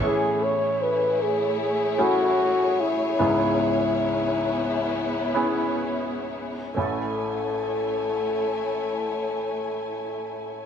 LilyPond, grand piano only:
<<
  \new Staff \with { instrumentName = "Grand piano" } { \time 4/4 \key a \major \tempo 4 = 68 <a cis' e' gis'>2 r8 <a cis' e' gis'>4. | <b cis' e' gis'>2 r8 <b cis' e' gis'>4. | <a cis' e' a'>1 | }
  \new Staff \with { instrumentName = "Grand piano" } { \clef bass \time 4/4 \key a \major <a, e>1 | <cis, gis,>1 | a,,1 | }
>>